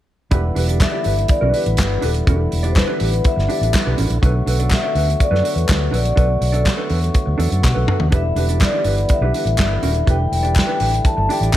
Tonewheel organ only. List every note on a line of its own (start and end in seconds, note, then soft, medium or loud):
0.31 8.08 D3 medium
0.31 4.18 E3 medium
0.31 4.18 G3 medium
0.31 4.18 B3 medium
0.31 4.18 E4 medium
4.22 8.08 F#3 medium
4.22 8.08 A3 medium
4.22 10.03 B3 medium
4.22 8.08 F#4 medium
8.12 11.57 D3 medium
8.12 11.57 E3 medium
8.12 11.57 G3 medium
8.12 11.57 E4 medium
10.08 11.57 A3 medium